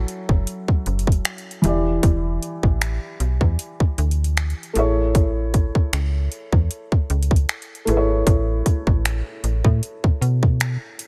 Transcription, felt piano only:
0, 0, Header, 1, 2, 480
1, 0, Start_track
1, 0, Key_signature, 3, "major"
1, 0, Tempo, 779221
1, 1252, Time_signature, 4, 2, 24, 8
1, 6822, End_track
2, 0, Start_track
2, 0, Title_t, "Felt piano"
2, 0, Program_c, 0, 0
2, 0, Control_c, 0, 64, 127
2, 0, Note_on_c, 0, 54, 75
2, 0, Note_on_c, 0, 61, 65
2, 0, Note_on_c, 0, 64, 69
2, 0, Note_on_c, 0, 69, 82
2, 978, Note_off_c, 0, 54, 0
2, 983, Note_off_c, 0, 61, 0
2, 989, Note_off_c, 0, 64, 0
2, 995, Note_off_c, 0, 69, 0
2, 996, Note_on_c, 0, 52, 72
2, 1007, Note_on_c, 0, 64, 65
2, 1017, Note_on_c, 0, 67, 63
2, 1018, Control_c, 0, 64, 0
2, 1028, Note_on_c, 0, 74, 77
2, 1121, Control_c, 0, 64, 127
2, 2899, Note_off_c, 0, 52, 0
2, 2905, Note_off_c, 0, 64, 0
2, 2910, Note_off_c, 0, 67, 0
2, 2915, Note_off_c, 0, 74, 0
2, 2916, Note_on_c, 0, 57, 71
2, 2927, Note_on_c, 0, 64, 68
2, 2938, Note_on_c, 0, 68, 67
2, 2939, Control_c, 0, 64, 0
2, 2948, Note_on_c, 0, 73, 78
2, 3066, Control_c, 0, 64, 127
2, 4819, Note_off_c, 0, 57, 0
2, 4825, Note_off_c, 0, 64, 0
2, 4830, Note_off_c, 0, 68, 0
2, 4835, Note_off_c, 0, 73, 0
2, 4837, Note_on_c, 0, 57, 73
2, 4847, Note_on_c, 0, 64, 67
2, 4859, Note_on_c, 0, 68, 68
2, 4870, Note_on_c, 0, 71, 63
2, 4904, Note_off_c, 0, 71, 0
2, 4909, Note_on_c, 0, 73, 77
2, 6740, Note_off_c, 0, 57, 0
2, 6745, Note_off_c, 0, 64, 0
2, 6750, Note_off_c, 0, 68, 0
2, 6776, Note_off_c, 0, 73, 0
2, 6822, End_track
0, 0, End_of_file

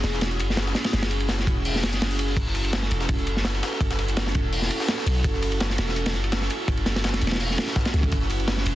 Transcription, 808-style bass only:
0, 0, Header, 1, 2, 480
1, 0, Start_track
1, 0, Key_signature, 3, "minor"
1, 0, Tempo, 359281
1, 1248, Time_signature, 4, 2, 24, 8
1, 11690, End_track
2, 0, Start_track
2, 0, Title_t, "808-style bass"
2, 0, Program_c, 0, 38
2, 47, Note_on_c, 0, 28, 101
2, 527, Note_on_c, 0, 30, 103
2, 547, Note_off_c, 0, 28, 0
2, 989, Note_off_c, 0, 30, 0
2, 1248, Note_on_c, 0, 30, 101
2, 1950, Note_off_c, 0, 30, 0
2, 1964, Note_on_c, 0, 28, 102
2, 2447, Note_on_c, 0, 30, 80
2, 2467, Note_off_c, 0, 28, 0
2, 3149, Note_off_c, 0, 30, 0
2, 3159, Note_on_c, 0, 30, 99
2, 3865, Note_off_c, 0, 30, 0
2, 3888, Note_on_c, 0, 28, 102
2, 4366, Note_on_c, 0, 30, 103
2, 4386, Note_off_c, 0, 28, 0
2, 4829, Note_off_c, 0, 30, 0
2, 5083, Note_on_c, 0, 30, 102
2, 5788, Note_off_c, 0, 30, 0
2, 5813, Note_on_c, 0, 28, 101
2, 6273, Note_off_c, 0, 28, 0
2, 6764, Note_on_c, 0, 35, 88
2, 6984, Note_off_c, 0, 35, 0
2, 7004, Note_on_c, 0, 30, 101
2, 7708, Note_off_c, 0, 30, 0
2, 7727, Note_on_c, 0, 28, 103
2, 8206, Note_on_c, 0, 30, 102
2, 8226, Note_off_c, 0, 28, 0
2, 8669, Note_off_c, 0, 30, 0
2, 8925, Note_on_c, 0, 30, 98
2, 9628, Note_off_c, 0, 30, 0
2, 9646, Note_on_c, 0, 28, 101
2, 10109, Note_off_c, 0, 28, 0
2, 10605, Note_on_c, 0, 37, 95
2, 10824, Note_off_c, 0, 37, 0
2, 10854, Note_on_c, 0, 30, 103
2, 11553, Note_off_c, 0, 30, 0
2, 11565, Note_on_c, 0, 28, 102
2, 11690, Note_off_c, 0, 28, 0
2, 11690, End_track
0, 0, End_of_file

